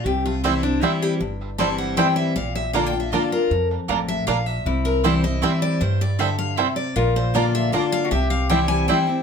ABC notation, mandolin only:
X:1
M:3/4
L:1/16
Q:1/4=156
K:Cmix
V:1 name="Mandolin"
z4 [CEcg] z3 [CEcg] z3 | z4 [CEcg] z3 [CEcg] z3 | z4 [B,Fdb] z3 [B,Fdb] z3 | z4 [B,Fdb] z3 [B,Fdb] z3 |
z4 [CEcg] z3 [CEcg] z3 | z4 [CEcg] z3 [CEcg] z3 | z4 [B,Fdb] z3 [B,Fdb] z3 | z4 [CEcg] z3 [CEcg] z3 |]